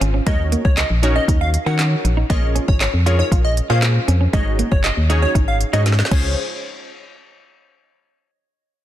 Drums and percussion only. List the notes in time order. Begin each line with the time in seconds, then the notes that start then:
0.01 closed hi-hat
0.27 kick, closed hi-hat
0.52 closed hi-hat
0.65 kick
0.77 snare, clap, closed hi-hat
1.03 closed hi-hat
1.28 kick, closed hi-hat
1.54 closed hi-hat
1.79 snare, clap, closed hi-hat
2.05 closed hi-hat
2.30 kick, closed hi-hat
2.56 closed hi-hat
2.68 kick
2.80 snare, clap, closed hi-hat
3.07 closed hi-hat
3.32 kick, closed hi-hat
3.57 closed hi-hat
3.82 snare, clap, closed hi-hat
4.08 closed hi-hat
4.33 kick, closed hi-hat
4.59 closed hi-hat
4.72 kick
4.84 snare, clap, closed hi-hat
5.10 closed hi-hat
5.35 kick, closed hi-hat
5.61 closed hi-hat
5.74 closed hi-hat
5.86 snare, closed hi-hat
5.92 snare
5.99 snare
6.05 snare
6.11 kick, crash